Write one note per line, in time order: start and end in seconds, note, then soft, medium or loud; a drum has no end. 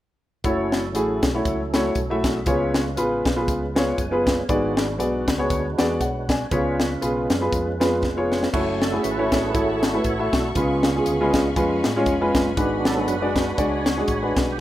0.44 0.95 F#1 medium
0.44 2.43 F#3 medium
0.44 0.80 A3 medium
0.44 1.94 C#4 medium
0.44 0.80 E4 medium
0.44 1.94 E4 medium
0.44 0.80 F#4 medium
0.44 1.94 A4 medium
0.44 0.81 C#5 medium
0.44 kick loud
0.44 closed hi-hat medium
0.72 snare medium
0.72 closed hi-hat medium
0.95 1.19 A1 medium
0.95 1.23 A3 medium
0.95 1.23 E4 medium
0.95 1.24 F#4 medium
0.95 1.24 G#4 medium
0.95 closed hi-hat medium
1.23 1.42 B1 medium
1.23 kick medium
1.23 snare loud
1.23 closed hi-hat medium
1.34 1.60 A3 medium
1.34 1.60 E4 medium
1.34 1.60 F#4 medium
1.34 1.60 C#5 medium
1.45 1.89 C#2 medium
1.45 kick medium
1.45 closed hi-hat medium
1.73 1.96 A3 medium
1.73 1.96 E4 medium
1.73 1.96 F#4 medium
1.73 1.97 C#5 medium
1.73 snare loud
1.73 closed hi-hat medium
1.95 2.47 B1 medium
1.95 2.24 C#4 soft
1.95 2.23 A4 medium
1.95 kick medium
1.95 closed hi-hat medium
2.10 2.36 A3 medium
2.10 2.36 E4 medium
2.10 2.36 F#4 medium
2.10 2.36 E5 medium
2.24 2.74 G#4 soft
2.24 2.73 E5 medium
2.24 kick medium
2.24 snare medium
2.24 closed hi-hat medium
2.46 2.97 C#2 loud
2.46 3.22 C#3 medium
2.46 4.45 G#3 medium
2.46 2.82 B3 medium
2.46 4.46 C#4 medium
2.46 2.83 F4 medium
2.46 3.96 F4 medium
2.46 2.83 G#4 medium
2.46 2.54 A#4 medium
2.46 2.83 C#5 medium
2.46 kick loud
2.46 closed hi-hat medium
2.54 3.99 B4 medium
2.74 snare medium
2.74 closed hi-hat medium
2.97 3.22 A1 medium
2.97 3.26 B3 medium
2.97 3.26 F4 medium
2.97 3.26 G#4 medium
2.97 3.26 B4 medium
2.97 closed hi-hat medium
3.25 3.48 B1 medium
3.25 kick medium
3.25 snare medium
3.25 closed hi-hat medium
3.36 3.62 B3 medium
3.36 3.62 F4 medium
3.36 3.62 G#4 medium
3.36 3.62 B4 medium
3.48 3.91 C#2 medium
3.48 kick medium
3.48 closed hi-hat medium
3.75 3.98 B3 medium
3.75 3.98 F4 medium
3.75 3.99 G#4 medium
3.75 3.99 C#5 medium
3.75 snare loud
3.75 closed hi-hat medium
3.98 4.41 F#1 medium
3.98 4.26 B4 soft
3.98 4.26 G#5 medium
3.98 kick medium
3.98 closed hi-hat medium
4.11 4.37 B3 medium
4.11 4.38 F4 medium
4.11 4.38 G#4 medium
4.11 4.38 B4 medium
4.27 4.76 F4 medium
4.27 4.76 C#5 medium
4.27 kick medium
4.27 snare medium
4.27 closed hi-hat medium
4.49 5.00 G#1 loud
4.49 5.24 G#2 medium
4.49 6.48 G#3 medium
4.49 4.85 B3 medium
4.49 6.47 D4 medium
4.49 4.85 F#4 medium
4.49 6.47 F#4 medium
4.49 4.85 G#4 medium
4.49 6.47 B4 medium
4.49 4.85 D5 medium
4.49 kick loud
4.49 closed hi-hat medium
4.77 snare loud
4.77 closed hi-hat soft
4.99 5.24 B1 medium
4.99 5.28 B3 medium
4.99 5.28 F#4 medium
4.99 5.28 G#4 medium
4.99 5.28 D5 medium
4.99 closed hi-hat medium
5.28 5.47 C#2 medium
5.28 kick medium
5.28 snare loud
5.28 closed hi-hat medium
5.38 5.64 B3 medium
5.38 5.64 F#4 medium
5.38 5.64 G#4 medium
5.38 5.65 C#5 medium
5.50 5.74 D2 medium
5.50 kick medium
5.50 closed hi-hat medium
5.78 5.98 E2 medium
5.78 6.00 B3 medium
5.78 6.01 F#4 medium
5.78 6.01 G#4 medium
5.78 6.01 D5 medium
5.78 snare medium
5.78 closed hi-hat medium
6.01 6.44 B1 medium
6.01 6.28 C#5 soft
6.01 6.28 F#5 medium
6.01 kick medium
6.01 closed hi-hat medium
6.29 6.78 D5 medium
6.29 6.77 G#5 medium
6.29 kick medium
6.29 snare medium
6.29 closed hi-hat medium
6.51 6.94 C#2 medium
6.51 7.27 C#3 medium
6.51 8.50 G#3 medium
6.51 6.87 B3 medium
6.51 8.50 C#4 medium
6.51 8.50 F4 medium
6.51 6.87 F4 medium
6.51 6.88 G#4 medium
6.51 8.50 B4 medium
6.51 6.88 C#5 medium
6.51 kick loud
6.51 closed hi-hat medium
6.80 snare medium
6.80 closed hi-hat medium
7.02 7.26 B1 medium
7.02 7.30 B3 medium
7.02 7.30 F4 medium
7.02 7.31 G#4 medium
7.02 7.31 B4 medium
7.02 closed hi-hat medium
7.30 7.49 F#2 medium
7.30 snare loud
7.30 closed hi-hat medium
7.41 7.66 B3 medium
7.41 7.67 F4 medium
7.41 7.67 G#4 medium
7.41 7.67 B4 medium
7.53 8.04 F2 medium
7.53 kick medium
7.53 closed hi-hat medium
7.80 8.03 B3 medium
7.80 8.03 F4 medium
7.80 8.03 G#4 medium
7.80 8.03 B4 medium
7.80 snare medium
7.80 closed hi-hat medium
8.03 8.46 F1 medium
8.03 kick medium
8.03 snare soft
8.16 8.42 B3 medium
8.16 8.42 F4 medium
8.16 8.43 G#4 medium
8.16 8.43 C#5 medium
8.32 snare medium
8.43 snare medium
8.53 8.97 F#1 loud
8.53 8.82 A3 medium
8.53 9.31 A3 medium
8.53 9.51 C#4 medium
8.53 8.82 E4 medium
8.53 8.66 F#4 medium
8.53 8.82 F#4 medium
8.53 8.82 C#5 medium
8.53 10.53 E5 medium
8.53 10.53 F#5 medium
8.53 10.53 A5 medium
8.53 12.53 C#6 medium
8.53 kick loud
8.53 crash medium
8.82 9.05 A4 medium
8.82 snare medium
8.82 closed hi-hat medium
8.92 9.08 A3 medium
8.92 9.09 E4 medium
8.92 9.09 F#4 medium
8.92 9.09 G#4 medium
9.03 9.28 G#1 medium
9.03 9.32 E4 medium
9.03 9.56 B4 loud
9.03 closed hi-hat medium
9.18 9.43 A3 medium
9.18 9.43 E4 medium
9.18 9.44 F#4 medium
9.18 9.44 C#5 medium
9.32 9.51 A1 medium
9.32 10.02 A3 soft
9.32 9.53 E4 soft
9.32 10.01 G#4 soft
9.32 kick medium
9.32 snare medium
9.32 closed hi-hat medium
9.53 9.98 G#1 medium
9.53 9.83 A3 medium
9.53 10.51 E4 medium
9.53 9.83 E4 medium
9.53 9.83 F#4 medium
9.53 10.51 A4 medium
9.53 10.02 C#5 medium
9.53 9.83 C#5 medium
9.53 kick medium
9.53 closed hi-hat medium
9.83 snare loud
9.83 closed hi-hat medium
9.94 10.10 A3 medium
9.94 10.10 E4 medium
9.94 10.10 F#4 medium
9.94 10.10 B4 medium
10.03 10.29 A1 medium
10.03 10.34 C#5 medium
10.03 kick medium
10.03 closed hi-hat medium
10.19 10.45 A3 medium
10.19 10.45 E4 medium
10.19 10.45 F#4 medium
10.19 10.45 E5 medium
10.32 10.52 B1 medium
10.32 10.55 F#4 medium
10.32 kick medium
10.32 snare medium
10.32 closed hi-hat medium
10.55 10.99 C#2 loud
10.55 11.31 C#3 medium
10.55 10.84 G#3 medium
10.55 11.32 B3 medium
10.55 10.84 C#4 medium
10.55 11.33 F4 medium
10.55 10.84 F4 medium
10.55 11.52 G#4 medium
10.55 10.85 B4 medium
10.55 12.55 F5 medium
10.55 14.60 G#5 medium
10.55 14.60 B5 medium
10.55 kick medium
10.55 closed hi-hat medium
10.83 snare medium
10.83 closed hi-hat medium
10.96 11.11 G#3 medium
10.96 11.11 C#4 medium
10.96 11.11 F4 medium
10.96 11.12 G#4 medium
11.06 11.30 D2 medium
11.06 closed hi-hat medium
11.20 11.46 G#3 medium
11.20 11.46 C#4 medium
11.20 11.46 F4 medium
11.20 11.46 B4 medium
11.33 11.58 C#2 medium
11.33 12.53 G#3 soft
11.33 12.53 B3 soft
11.33 12.53 F4 soft
11.33 kick medium
11.33 snare medium
11.33 closed hi-hat medium
11.56 11.81 F2 medium
11.56 11.85 G#3 medium
11.56 11.85 C#4 medium
11.56 11.85 F4 medium
11.56 11.85 B4 medium
11.56 kick medium
11.56 closed hi-hat medium
11.84 12.04 A2 medium
11.84 snare loud
11.84 closed hi-hat medium
11.96 12.12 G#3 medium
11.96 12.12 C#4 medium
11.96 12.12 F4 medium
11.96 12.13 C#5 medium
12.06 12.31 F1 medium
12.06 kick medium
12.06 closed hi-hat medium
12.21 12.46 G#3 medium
12.21 12.46 C#4 medium
12.21 12.47 F4 medium
12.21 12.47 B4 medium
12.35 12.57 F#1 medium
12.35 kick medium
12.35 snare loud
12.35 closed hi-hat medium
12.57 13.08 G#1 medium
12.57 13.32 G#2 medium
12.57 12.86 G#3 medium
12.57 12.85 B3 medium
12.57 12.86 D4 medium
12.57 12.85 D4 medium
12.57 12.86 F#4 medium
12.57 12.86 B4 medium
12.57 14.57 F#5 medium
12.57 kick loud
12.57 closed hi-hat medium
12.85 13.17 F#3 soft
12.85 13.18 B3 soft
12.85 13.06 D4 medium
12.85 13.09 A4 medium
12.85 snare loud
12.85 closed hi-hat medium
12.96 13.12 G#3 medium
12.96 13.13 D4 medium
12.96 13.13 F#4 medium
12.96 13.13 B4 medium
13.07 13.51 F#1 medium
13.07 14.05 D4 medium
13.07 13.57 F#4 medium
13.07 13.60 B4 loud
13.07 closed hi-hat medium
13.21 13.47 G#3 medium
13.21 13.47 D4 medium
13.21 13.47 F#4 medium
13.21 13.48 D5 medium
13.36 kick medium
13.36 snare medium
13.36 closed hi-hat medium
13.57 14.01 C#2 medium
13.57 13.86 G#3 medium
13.57 13.86 D4 medium
13.57 14.35 F#4 medium
13.57 13.87 F#4 medium
13.57 14.05 C#5 medium
13.57 13.87 D5 medium
13.57 kick medium
13.57 closed hi-hat medium
13.86 snare loud
13.86 closed hi-hat medium
13.97 14.13 G#3 medium
13.97 14.13 D4 medium
13.97 14.14 F#4 medium
13.97 14.14 G#4 medium
14.08 14.33 A1 medium
14.08 14.38 C#5 medium
14.08 kick medium
14.08 closed hi-hat medium
14.22 14.48 G#3 medium
14.22 14.48 D4 medium
14.22 14.48 F#4 medium
14.22 14.48 B4 medium
14.36 14.59 B1 medium
14.36 14.44 F#4 medium
14.36 kick medium
14.36 snare medium
14.36 closed hi-hat medium
14.52 14.59 G4 medium